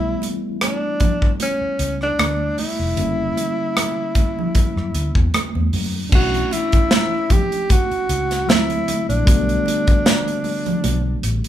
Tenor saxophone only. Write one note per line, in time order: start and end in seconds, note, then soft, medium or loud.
0.00 0.37 E4 medium
0.63 1.37 D4 medium
1.42 1.98 C#4 medium
2.03 2.55 D4 medium
2.59 5.30 E4 medium
6.15 6.54 F#4 loud
6.53 7.34 E4 medium
7.32 7.73 G4 medium
7.71 8.51 F#4 medium
8.50 9.09 E4 medium
9.09 11.41 D4 medium